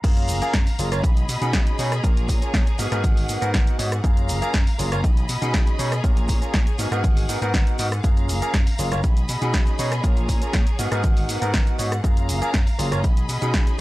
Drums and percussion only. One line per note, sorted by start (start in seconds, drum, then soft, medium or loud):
0.04 kick loud
0.04 closed hi-hat medium
0.04 crash loud
0.04 shaker medium
0.04 shaker soft
0.17 closed hi-hat soft
0.17 shaker soft
0.28 open hi-hat loud
0.28 shaker loud
0.29 shaker medium
0.42 closed hi-hat soft
0.42 shaker soft
0.54 kick loud
0.54 snare loud
0.54 closed hi-hat medium
0.54 shaker soft
0.66 open hi-hat medium
0.66 shaker soft
0.79 open hi-hat loud
0.79 shaker loud
0.79 shaker medium
0.91 cross-stick medium
0.91 closed hi-hat soft
0.91 shaker soft
1.04 kick loud
1.04 closed hi-hat medium
1.04 shaker medium
1.04 shaker soft
1.17 closed hi-hat soft
1.17 shaker soft
1.29 open hi-hat loud
1.29 shaker medium
1.42 closed hi-hat soft
1.42 shaker soft
1.53 kick loud
1.53 snare loud
1.53 closed hi-hat medium
1.53 shaker medium
1.53 shaker soft
1.66 closed hi-hat soft
1.66 shaker soft
1.79 open hi-hat loud
1.79 shaker medium
1.92 cross-stick medium
1.92 closed hi-hat soft
1.92 shaker soft
2.04 kick loud
2.04 closed hi-hat medium
2.04 shaker medium
2.04 shaker soft
2.16 closed hi-hat soft
2.16 shaker soft
2.29 kick medium
2.29 open hi-hat loud
2.29 shaker loud
2.29 shaker medium
2.42 closed hi-hat soft
2.42 shaker soft
2.54 kick loud
2.54 snare loud
2.54 closed hi-hat medium
2.54 shaker medium
2.54 shaker soft
2.66 closed hi-hat soft
2.66 shaker soft
2.78 open hi-hat loud
2.78 shaker loud
2.78 shaker medium
2.92 cross-stick medium
2.92 closed hi-hat soft
2.92 shaker soft
3.04 kick loud
3.04 closed hi-hat medium
3.04 shaker medium
3.04 shaker soft
3.16 open hi-hat medium
3.16 shaker soft
3.28 open hi-hat loud
3.28 shaker medium
3.42 closed hi-hat soft
3.42 shaker soft
3.54 kick loud
3.54 snare loud
3.54 closed hi-hat medium
3.54 shaker medium
3.54 shaker soft
3.66 closed hi-hat soft
3.66 shaker soft
3.79 open hi-hat loud
3.79 shaker medium
3.91 cross-stick medium
3.91 closed hi-hat soft
3.91 shaker soft
4.04 kick loud
4.04 closed hi-hat medium
4.04 shaker medium
4.04 shaker soft
4.17 closed hi-hat soft
4.17 shaker soft
4.28 open hi-hat loud
4.28 shaker medium
4.42 closed hi-hat soft
4.42 shaker soft
4.53 kick loud
4.53 snare loud
4.53 closed hi-hat medium
4.53 shaker medium
4.53 shaker soft
4.66 open hi-hat medium
4.66 shaker soft
4.79 open hi-hat loud
4.79 shaker loud
4.79 shaker medium
4.92 cross-stick medium
4.92 closed hi-hat soft
4.92 shaker soft
5.04 kick loud
5.04 closed hi-hat medium
5.04 shaker medium
5.04 shaker soft
5.17 closed hi-hat soft
5.17 shaker soft
5.28 open hi-hat loud
5.28 shaker loud
5.28 shaker medium
5.41 closed hi-hat soft
5.41 shaker soft
5.54 kick loud
5.54 snare loud
5.54 closed hi-hat medium
5.54 shaker medium
5.54 shaker soft
5.66 closed hi-hat soft
5.66 shaker soft
5.79 open hi-hat loud
5.79 shaker loud
5.79 shaker medium
5.92 cross-stick medium
5.92 closed hi-hat soft
5.92 shaker soft
6.04 kick loud
6.04 closed hi-hat medium
6.04 shaker medium
6.04 shaker soft
6.17 closed hi-hat soft
6.17 shaker soft
6.28 kick medium
6.28 open hi-hat loud
6.28 shaker loud
6.30 shaker medium
6.42 closed hi-hat soft
6.42 shaker soft
6.54 kick loud
6.54 snare loud
6.54 closed hi-hat medium
6.54 shaker medium
6.54 shaker soft
6.67 closed hi-hat soft
6.67 shaker soft
6.78 open hi-hat loud
6.78 shaker medium
6.92 cross-stick medium
6.92 closed hi-hat soft
6.92 shaker soft
7.04 kick loud
7.04 closed hi-hat medium
7.04 shaker medium
7.04 shaker soft
7.17 open hi-hat medium
7.17 shaker soft
7.29 open hi-hat loud
7.29 shaker loud
7.29 shaker medium
7.42 closed hi-hat soft
7.42 shaker soft
7.54 kick loud
7.54 snare loud
7.54 closed hi-hat medium
7.54 shaker medium
7.54 shaker soft
7.67 closed hi-hat soft
7.67 shaker soft
7.79 open hi-hat loud
7.79 shaker loud
7.79 shaker medium
7.91 cross-stick medium
7.91 closed hi-hat soft
7.91 shaker soft
8.03 kick loud
8.03 closed hi-hat medium
8.03 shaker medium
8.03 shaker soft
8.16 closed hi-hat soft
8.16 shaker soft
8.29 open hi-hat loud
8.29 shaker medium
8.41 closed hi-hat soft
8.41 shaker soft
8.54 kick loud
8.54 snare loud
8.54 closed hi-hat medium
8.54 shaker soft
8.66 open hi-hat medium
8.66 shaker soft
8.78 open hi-hat loud
8.78 shaker loud
8.78 shaker medium
8.92 cross-stick medium
8.92 closed hi-hat soft
8.92 shaker soft
9.03 kick loud
9.03 closed hi-hat medium
9.03 shaker soft
9.16 closed hi-hat soft
9.16 shaker soft
9.28 open hi-hat loud
9.28 shaker medium
9.41 closed hi-hat soft
9.41 shaker soft
9.53 kick loud
9.53 snare loud
9.53 closed hi-hat medium
9.53 shaker medium
9.53 shaker soft
9.66 closed hi-hat soft
9.66 shaker soft
9.67 shaker soft
9.78 open hi-hat loud
9.78 shaker medium
9.91 cross-stick medium
9.91 closed hi-hat soft
9.91 shaker soft
10.03 kick loud
10.03 closed hi-hat medium
10.03 shaker medium
10.03 shaker soft
10.16 closed hi-hat soft
10.16 shaker soft
10.29 kick medium
10.29 open hi-hat loud
10.29 shaker medium
10.41 closed hi-hat soft
10.41 shaker soft
10.53 kick loud
10.53 snare loud
10.53 closed hi-hat medium
10.53 shaker medium
10.53 shaker soft
10.66 closed hi-hat soft
10.66 shaker soft
10.79 open hi-hat loud
10.79 shaker medium
10.92 cross-stick medium
10.92 closed hi-hat soft
10.92 shaker soft
11.03 kick loud
11.03 closed hi-hat medium
11.03 shaker soft
11.17 open hi-hat medium
11.17 shaker soft
11.29 open hi-hat loud
11.29 shaker medium
11.42 closed hi-hat soft
11.42 shaker soft
11.53 kick loud
11.53 snare loud
11.53 closed hi-hat medium
11.53 shaker soft
11.66 closed hi-hat soft
11.66 shaker soft
11.79 open hi-hat loud
11.79 shaker loud
11.79 shaker medium
11.92 cross-stick medium
11.92 closed hi-hat soft
11.92 shaker soft
12.04 kick loud
12.04 closed hi-hat medium
12.04 shaker medium
12.04 shaker soft
12.17 closed hi-hat soft
12.17 shaker soft
12.29 open hi-hat loud
12.29 shaker medium
12.42 closed hi-hat soft
12.42 shaker soft
12.54 kick loud
12.54 snare loud
12.54 closed hi-hat medium
12.54 shaker soft
12.67 open hi-hat medium
12.67 shaker soft
12.79 open hi-hat loud
12.79 shaker medium
12.92 cross-stick medium
12.92 closed hi-hat soft
12.92 shaker soft
13.04 kick loud
13.04 closed hi-hat medium
13.04 shaker medium
13.04 shaker soft
13.17 closed hi-hat soft
13.17 shaker soft
13.29 open hi-hat loud
13.29 shaker medium
13.41 closed hi-hat soft
13.41 shaker soft
13.54 kick loud
13.54 snare loud
13.54 closed hi-hat medium
13.54 shaker medium
13.54 shaker soft
13.67 closed hi-hat soft
13.67 shaker soft